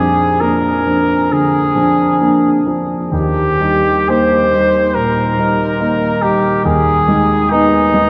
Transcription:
Already playing: F2 F3 D4 G#4
0.40 A#3 D4 A#4
0.86 F3 D4
1.32 D3 G#4
1.75 F3 D4
2.21 A#3 D4
2.66 F3 D4
3.11 D#2 G4
3.59 G3 D#4
4.09 A#3 D#4 C5
4.54 G3 D#4
4.94 A#2 A#4
5.37 G3 D#4
5.80 A#3 D#4
6.22 G3 D#4 G4
6.65 D#2 G#4
7.08 G#3 D#4
7.50 B3 D#4
7.94 G#3 D#4

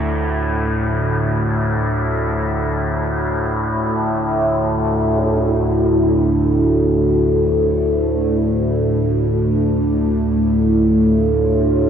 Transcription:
Already playing: D2 A2
5.22 D2 A2 D3
6.57 A3
8.32 D4
10.36 F4

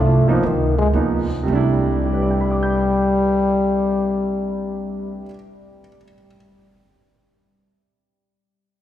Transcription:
Already playing: C2
0.00 A3
0.28 F3 A#3 B3 D#4
0.43 C#2 D#3
0.78 G#3
0.93 D#2 F3 A#3 B3 D#4
1.43 C3 G3
1.48 C2 G3 A3
1.53 D4 E4
2.06 G4
2.13 B4
2.21 D5
2.31 G5
2.41 B5
2.52 D6
2.63 G6

